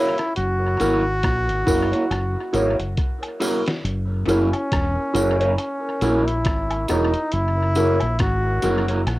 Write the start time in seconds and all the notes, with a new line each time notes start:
Already playing: E4 F#4 A#4 C#5
0.18 cross-stick, closed hi-hat
0.36 F#1 F#4, closed hi-hat
0.80 G#1 E4 F#4 A#4 C#5, closed hi-hat, tambourine
1.23 A#1, kick, cross-stick, closed hi-hat
1.49 G#1, closed hi-hat
1.66 F#1 E4 F#4 A#4 C#5, kick, open hi-hat, tambourine
1.92 E4 A#4 C#5, closed hi-hat
2.10 F#1, cross-stick, closed hi-hat, high woodblock
2.53 G#1 E4 F#4 A#4 C#5, closed hi-hat, tambourine
2.79 F#1, closed hi-hat
2.97 kick, closed hi-hat
3.23 closed hi-hat, high woodblock
3.40 E4 F#4 A#4 C#5, open hi-hat, tambourine
3.66 F#4 A#4, snare, closed hi-hat
3.84 F#1, closed hi-hat
4.27 F#1 C#4 E4 F#4 A#4 C#5, closed hi-hat, tambourine
4.53 closed hi-hat, high woodblock
4.72 E1, kick, cross-stick, closed hi-hat
5.14 F#1 E4 F#4 A#4 C#5, closed hi-hat, tambourine
5.40 E4 A#4 C#5, closed hi-hat
5.58 C#4, closed hi-hat, high woodblock
6.01 A#1 E4 F#4 A#4 C#5, closed hi-hat, tambourine
6.26 E4, closed hi-hat
6.45 G#1, kick, cross-stick, closed hi-hat
6.70 closed hi-hat, high woodblock
6.88 E1 D#4 E4 F#4 A#4 C#5, cross-stick, closed hi-hat, tambourine
7.14 closed hi-hat
7.32 F#1 E4, closed hi-hat
7.75 E4 F#4 A#4 C#5, closed hi-hat, tambourine
8.00 A#1, closed hi-hat, high woodblock
8.19 G#1 F#4, kick, cross-stick, closed hi-hat
8.62 F#1 E4 F#4 A#4 C#5, closed hi-hat, tambourine
8.88 E4 A#4 C#5, closed hi-hat
9.07 A#1, cross-stick, closed hi-hat, high woodblock